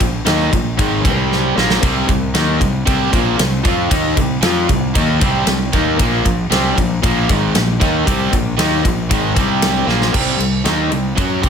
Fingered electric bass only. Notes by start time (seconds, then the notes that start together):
0.00 A#1
0.26 D#2
0.53 A#1
0.79 G#1
1.05 C2
1.57 A#1
1.83 C2
2.08 C2
2.35 D#2
2.61 C2
2.87 C2
3.13 A#1
3.39 C2
3.65 F2
3.91 D#2
4.17 C2
4.42 F2
4.69 C2
4.95 D#2
5.22 C2
5.46 C2
5.73 D#2
5.99 A#1
6.26 A#1
6.50 C2
6.77 A#1
7.04 A#1
7.30 G#1
7.54 A#1
7.81 D#2
8.07 C2
8.33 A#1
8.58 D#2
8.85 A#1
9.11 G#1
9.37 C2
9.87 A#1
10.14 C2
10.39 C2
10.65 D#2
10.92 C2
11.17 F#2
11.43 C2